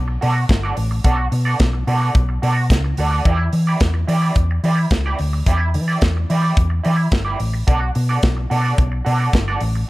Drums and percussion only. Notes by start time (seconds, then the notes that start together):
0.22 open hi-hat
0.49 kick, snare, closed hi-hat
0.77 open hi-hat
1.04 kick, closed hi-hat
1.32 open hi-hat
1.59 kick, snare, closed hi-hat
1.88 open hi-hat
2.15 kick, closed hi-hat
2.43 open hi-hat
2.70 kick, snare, closed hi-hat
2.97 open hi-hat
3.25 kick, closed hi-hat
3.53 open hi-hat
3.80 kick, snare, closed hi-hat
4.08 open hi-hat
4.36 kick, closed hi-hat
4.64 open hi-hat
4.91 kick, snare, closed hi-hat
5.19 open hi-hat
5.46 kick, closed hi-hat
5.74 open hi-hat
6.01 kick, snare, closed hi-hat
6.30 open hi-hat
6.57 kick, closed hi-hat
6.84 open hi-hat
7.12 kick, snare, closed hi-hat
7.40 open hi-hat
7.68 kick, closed hi-hat
7.95 open hi-hat
8.23 kick, snare, closed hi-hat
8.51 open hi-hat
8.78 kick, closed hi-hat
9.06 open hi-hat
9.33 kick, snare, closed hi-hat
9.60 open hi-hat